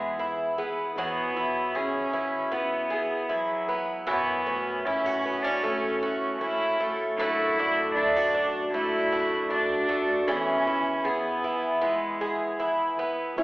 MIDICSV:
0, 0, Header, 1, 6, 480
1, 0, Start_track
1, 0, Tempo, 775194
1, 604, Time_signature, 4, 2, 24, 8
1, 8319, End_track
2, 0, Start_track
2, 0, Title_t, "Steel-string acoustic guitar"
2, 0, Program_c, 0, 25
2, 0, Note_on_c, 0, 52, 64
2, 0, Note_on_c, 0, 59, 62
2, 0, Note_on_c, 0, 64, 51
2, 0, Note_on_c, 0, 68, 61
2, 121, Note_off_c, 0, 64, 0
2, 124, Note_on_c, 0, 64, 57
2, 350, Note_off_c, 0, 68, 0
2, 358, Note_on_c, 0, 68, 60
2, 566, Note_off_c, 0, 59, 0
2, 572, Note_off_c, 0, 68, 0
2, 589, Note_off_c, 0, 52, 0
2, 592, Note_on_c, 0, 52, 67
2, 594, Note_on_c, 0, 71, 63
2, 829, Note_off_c, 0, 64, 0
2, 829, Note_on_c, 0, 64, 58
2, 1083, Note_on_c, 0, 68, 51
2, 1315, Note_off_c, 0, 71, 0
2, 1322, Note_on_c, 0, 71, 58
2, 1563, Note_off_c, 0, 64, 0
2, 1565, Note_on_c, 0, 64, 60
2, 1802, Note_off_c, 0, 68, 0
2, 1809, Note_on_c, 0, 68, 63
2, 2042, Note_off_c, 0, 71, 0
2, 2049, Note_on_c, 0, 71, 69
2, 2287, Note_off_c, 0, 71, 0
2, 2294, Note_on_c, 0, 71, 59
2, 2497, Note_off_c, 0, 64, 0
2, 2498, Note_off_c, 0, 68, 0
2, 2501, Note_off_c, 0, 71, 0
2, 2524, Note_on_c, 0, 42, 75
2, 2530, Note_on_c, 0, 73, 58
2, 2759, Note_off_c, 0, 52, 0
2, 2764, Note_on_c, 0, 57, 52
2, 3013, Note_on_c, 0, 64, 59
2, 3258, Note_on_c, 0, 66, 53
2, 3493, Note_off_c, 0, 57, 0
2, 3495, Note_on_c, 0, 57, 62
2, 3720, Note_off_c, 0, 64, 0
2, 3728, Note_on_c, 0, 64, 54
2, 3963, Note_off_c, 0, 57, 0
2, 3970, Note_on_c, 0, 57, 52
2, 4207, Note_off_c, 0, 57, 0
2, 4214, Note_on_c, 0, 57, 44
2, 4417, Note_off_c, 0, 64, 0
2, 4418, Note_off_c, 0, 73, 0
2, 4420, Note_off_c, 0, 57, 0
2, 4422, Note_off_c, 0, 66, 0
2, 4438, Note_off_c, 0, 42, 0
2, 4444, Note_on_c, 0, 42, 68
2, 4446, Note_on_c, 0, 62, 60
2, 4690, Note_on_c, 0, 57, 56
2, 4924, Note_off_c, 0, 62, 0
2, 4938, Note_on_c, 0, 62, 58
2, 5168, Note_on_c, 0, 66, 64
2, 5401, Note_off_c, 0, 57, 0
2, 5408, Note_on_c, 0, 57, 63
2, 5645, Note_off_c, 0, 62, 0
2, 5653, Note_on_c, 0, 62, 56
2, 5880, Note_off_c, 0, 66, 0
2, 5887, Note_on_c, 0, 66, 66
2, 6114, Note_off_c, 0, 66, 0
2, 6121, Note_on_c, 0, 66, 58
2, 6332, Note_off_c, 0, 66, 0
2, 6336, Note_off_c, 0, 57, 0
2, 6338, Note_off_c, 0, 62, 0
2, 6358, Note_on_c, 0, 52, 67
2, 6361, Note_on_c, 0, 71, 66
2, 6362, Note_off_c, 0, 42, 0
2, 6601, Note_on_c, 0, 64, 66
2, 6838, Note_on_c, 0, 68, 56
2, 7077, Note_off_c, 0, 71, 0
2, 7084, Note_on_c, 0, 71, 59
2, 7313, Note_off_c, 0, 64, 0
2, 7321, Note_on_c, 0, 64, 56
2, 7550, Note_off_c, 0, 68, 0
2, 7557, Note_on_c, 0, 68, 54
2, 7786, Note_off_c, 0, 71, 0
2, 7793, Note_on_c, 0, 71, 61
2, 8027, Note_off_c, 0, 71, 0
2, 8035, Note_on_c, 0, 71, 55
2, 8249, Note_off_c, 0, 71, 0
2, 8250, Note_off_c, 0, 68, 0
2, 8252, Note_off_c, 0, 64, 0
2, 8269, Note_off_c, 0, 52, 0
2, 8273, Note_on_c, 0, 45, 57
2, 8277, Note_on_c, 0, 52, 48
2, 8281, Note_on_c, 0, 61, 52
2, 8319, Note_off_c, 0, 45, 0
2, 8319, Note_off_c, 0, 52, 0
2, 8319, Note_off_c, 0, 61, 0
2, 8319, End_track
3, 0, Start_track
3, 0, Title_t, "Twelve-string acoustic guitar"
3, 0, Program_c, 1, 25
3, 0, Note_on_c, 1, 59, 74
3, 0, Note_on_c, 1, 64, 56
3, 0, Note_on_c, 1, 68, 64
3, 117, Note_off_c, 1, 64, 0
3, 120, Note_on_c, 1, 64, 52
3, 353, Note_off_c, 1, 59, 0
3, 361, Note_on_c, 1, 59, 58
3, 603, Note_off_c, 1, 68, 0
3, 607, Note_on_c, 1, 54, 75
3, 610, Note_on_c, 1, 68, 61
3, 651, Note_off_c, 1, 59, 0
3, 843, Note_off_c, 1, 64, 0
3, 845, Note_on_c, 1, 64, 49
3, 1075, Note_off_c, 1, 68, 0
3, 1083, Note_on_c, 1, 68, 53
3, 1318, Note_off_c, 1, 64, 0
3, 1321, Note_on_c, 1, 64, 53
3, 1558, Note_on_c, 1, 59, 57
3, 1790, Note_off_c, 1, 68, 0
3, 1797, Note_on_c, 1, 68, 55
3, 2031, Note_off_c, 1, 64, 0
3, 2039, Note_on_c, 1, 64, 53
3, 2274, Note_off_c, 1, 59, 0
3, 2282, Note_on_c, 1, 59, 54
3, 2515, Note_off_c, 1, 54, 0
3, 2518, Note_on_c, 1, 52, 82
3, 2520, Note_off_c, 1, 68, 0
3, 2522, Note_on_c, 1, 66, 67
3, 2570, Note_off_c, 1, 64, 0
3, 2571, Note_off_c, 1, 59, 0
3, 2765, Note_on_c, 1, 61, 53
3, 3010, Note_off_c, 1, 66, 0
3, 3013, Note_on_c, 1, 64, 63
3, 3132, Note_off_c, 1, 64, 0
3, 3132, Note_on_c, 1, 66, 47
3, 3245, Note_off_c, 1, 61, 0
3, 3254, Note_on_c, 1, 59, 48
3, 3370, Note_off_c, 1, 59, 0
3, 3370, Note_on_c, 1, 61, 43
3, 3489, Note_on_c, 1, 57, 61
3, 3724, Note_off_c, 1, 66, 0
3, 3731, Note_on_c, 1, 66, 61
3, 3961, Note_off_c, 1, 61, 0
3, 3969, Note_on_c, 1, 61, 51
3, 4204, Note_off_c, 1, 57, 0
3, 4211, Note_on_c, 1, 57, 54
3, 4441, Note_off_c, 1, 52, 0
3, 4447, Note_off_c, 1, 66, 0
3, 4448, Note_off_c, 1, 57, 0
3, 4455, Note_on_c, 1, 57, 84
3, 4460, Note_on_c, 1, 66, 73
3, 4494, Note_off_c, 1, 61, 0
3, 4700, Note_on_c, 1, 62, 56
3, 4931, Note_off_c, 1, 66, 0
3, 4933, Note_on_c, 1, 64, 51
3, 5056, Note_off_c, 1, 64, 0
3, 5056, Note_on_c, 1, 66, 52
3, 5160, Note_off_c, 1, 62, 0
3, 5168, Note_on_c, 1, 62, 55
3, 5405, Note_off_c, 1, 57, 0
3, 5412, Note_on_c, 1, 57, 64
3, 5642, Note_off_c, 1, 66, 0
3, 5650, Note_on_c, 1, 66, 58
3, 5877, Note_off_c, 1, 62, 0
3, 5885, Note_on_c, 1, 62, 57
3, 6115, Note_off_c, 1, 57, 0
3, 6123, Note_on_c, 1, 57, 63
3, 6364, Note_on_c, 1, 52, 82
3, 6365, Note_off_c, 1, 66, 0
3, 6370, Note_on_c, 1, 68, 64
3, 6410, Note_off_c, 1, 57, 0
3, 6411, Note_off_c, 1, 62, 0
3, 6607, Note_on_c, 1, 64, 54
3, 6832, Note_off_c, 1, 68, 0
3, 6840, Note_on_c, 1, 68, 58
3, 7077, Note_off_c, 1, 64, 0
3, 7084, Note_on_c, 1, 64, 53
3, 7315, Note_on_c, 1, 59, 59
3, 7554, Note_off_c, 1, 68, 0
3, 7561, Note_on_c, 1, 68, 62
3, 7793, Note_off_c, 1, 64, 0
3, 7800, Note_on_c, 1, 64, 59
3, 8035, Note_off_c, 1, 59, 0
3, 8043, Note_on_c, 1, 59, 57
3, 8282, Note_off_c, 1, 52, 0
3, 8282, Note_off_c, 1, 59, 0
3, 8284, Note_on_c, 1, 61, 68
3, 8319, Note_off_c, 1, 61, 0
3, 8319, Note_off_c, 1, 64, 0
3, 8319, Note_off_c, 1, 68, 0
3, 8319, End_track
4, 0, Start_track
4, 0, Title_t, "Upright piano"
4, 0, Program_c, 2, 0
4, 8284, Note_on_c, 2, 64, 64
4, 8319, Note_off_c, 2, 64, 0
4, 8319, End_track
5, 0, Start_track
5, 0, Title_t, "Cello"
5, 0, Program_c, 3, 42
5, 0, Note_on_c, 3, 56, 75
5, 129, Note_off_c, 3, 56, 0
5, 619, Note_on_c, 3, 59, 88
5, 1092, Note_on_c, 3, 61, 84
5, 1101, Note_off_c, 3, 59, 0
5, 1567, Note_on_c, 3, 59, 83
5, 1577, Note_off_c, 3, 61, 0
5, 2052, Note_on_c, 3, 54, 91
5, 2061, Note_off_c, 3, 59, 0
5, 2409, Note_off_c, 3, 54, 0
5, 2526, Note_on_c, 3, 59, 103
5, 3004, Note_on_c, 3, 61, 96
5, 3013, Note_off_c, 3, 59, 0
5, 3359, Note_on_c, 3, 62, 84
5, 3368, Note_off_c, 3, 61, 0
5, 3489, Note_on_c, 3, 61, 90
5, 3498, Note_off_c, 3, 62, 0
5, 3967, Note_off_c, 3, 61, 0
5, 3971, Note_on_c, 3, 64, 99
5, 4303, Note_off_c, 3, 64, 0
5, 4440, Note_on_c, 3, 64, 111
5, 4897, Note_off_c, 3, 64, 0
5, 4920, Note_on_c, 3, 62, 100
5, 5376, Note_off_c, 3, 62, 0
5, 5409, Note_on_c, 3, 64, 100
5, 5861, Note_off_c, 3, 64, 0
5, 5893, Note_on_c, 3, 62, 98
5, 6360, Note_on_c, 3, 61, 99
5, 6369, Note_off_c, 3, 62, 0
5, 6848, Note_on_c, 3, 59, 94
5, 6857, Note_off_c, 3, 61, 0
5, 7320, Note_on_c, 3, 56, 78
5, 7330, Note_off_c, 3, 59, 0
5, 7801, Note_off_c, 3, 56, 0
5, 8319, End_track
6, 0, Start_track
6, 0, Title_t, "Upright bass"
6, 0, Program_c, 4, 32
6, 0, Note_on_c, 4, 40, 73
6, 583, Note_off_c, 4, 40, 0
6, 603, Note_on_c, 4, 40, 74
6, 2499, Note_off_c, 4, 40, 0
6, 2523, Note_on_c, 4, 42, 74
6, 4418, Note_off_c, 4, 42, 0
6, 4446, Note_on_c, 4, 42, 81
6, 6338, Note_off_c, 4, 42, 0
6, 6365, Note_on_c, 4, 40, 80
6, 8258, Note_off_c, 4, 40, 0
6, 8276, Note_on_c, 4, 33, 64
6, 8319, Note_off_c, 4, 33, 0
6, 8319, End_track
0, 0, End_of_file